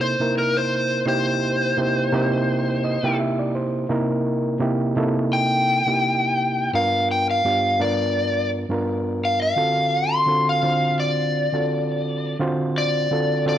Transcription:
Already playing: C3 A#3 D#4 E4 A4
0.01 C5
0.19 C3 A#3 D#4 E4 A#4
0.38 A#4
0.57 C5
1.06 C3 A#3 D#4 E4 G4 C5
1.77 C3 A#3 D#4 E4 G4
2.12 C3 A#3 D#4 E4 G4
2.84 D#5
3.03 C3 A#3 D#4 E4 G4 G5
3.20 E5
3.39 D5
3.55 C5
3.89 C3 A#3 D#4 E4 A#4
4.60 C3 A#3 D#4 E4 G4
4.96 C3 A#3 D#4 E4 A4
5.33 G5
5.86 C3 A#3 D#4 E4 G4
6.73 G2 B3 D4 F4 A#4 F5
7.11 G5
7.31 F5
7.44 G2 B3 D4 F4 G4
7.79 G2 B3 D4 F4 A#4 D5
8.69 G2 B3 D4 F4 A#4
9.25 F5
9.42 F5
9.56 D3 C4 F4 F#4 A4
10.13 C6
10.26 D3 C4 F4 F#4 A4
10.49 F5
10.63 D3 C4 F4 F#4 C5
11.00 D5
11.52 D3 C4 F4 F#4 A4
12.39 D3 C4 F4 F#4 C5
12.78 D5
13.11 D3 C4 F4 F#4 A4
13.45 D3 C4 F4 F#4 A4 D5

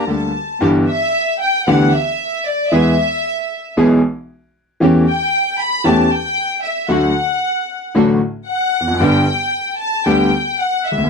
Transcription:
0.06 D2 D3 G3 A#3 D4 G4 A4 A5
0.61 G1 G2 E3 B3 D4 E4 G4
0.89 E5
1.41 G5
1.66 D2 D3 E3 B3 D4 E4 G4 F#5
1.93 E5
2.45 D5
2.70 E2 E3 G#3 B3 E4 G#4 E5
3.77 B1 B2 E3 G#3 B3 E4 G#4
4.80 E2 E3 A3 C#4 G4
5.09 G5
5.59 B5
5.84 E2 E3 A3 C#4 G4 A5
6.11 G5
6.63 E5
6.88 D2 D3 F#3 A3 D4 F#4 F#5
7.95 A1 A2 D3 F#3 A3 D4 F#4
8.48 F#5
8.81 E2
8.88 F2
8.94 F#2
9.00 G1 G2 D3 G3 B3 D4 G4 G5
9.80 A5
10.06 D2 D3 G3 B3 D4 G4 G5
10.60 F#5
10.86 E5
10.92 C#2
10.98 D2
11.04 D#2

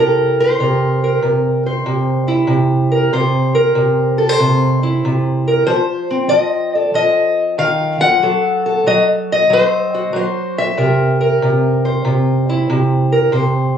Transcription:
Already playing: C3 G3 E4 A4 A#4
0.40 C5
0.60 C3 A#4
1.04 A#4
1.22 C3 A#4
1.66 C5
1.86 C3
2.28 E4
2.47 C3
2.92 A#4
3.13 C3 C5
3.55 A#4
3.75 C3
4.18 A4
4.29 C5
4.40 C3
4.83 E4
5.05 C3
5.48 A#4
5.67 F3 C5
6.11 C4
6.29 F3 D#5
6.75 A4 D5
6.94 F3 D#5
7.58 D#3 F5
8.00 F3 F#5
8.23 F#3 A4
8.66 A4
8.87 F#3 D#5
9.32 D#5
9.50 F#3 C5
9.94 F#4
10.13 F#3 C5
10.58 E5
10.78 C3 A#4
11.21 A#4
11.42 C3
11.85 C5
12.05 C3
12.49 E4
12.70 C3
13.12 A#4
13.32 C3 C5

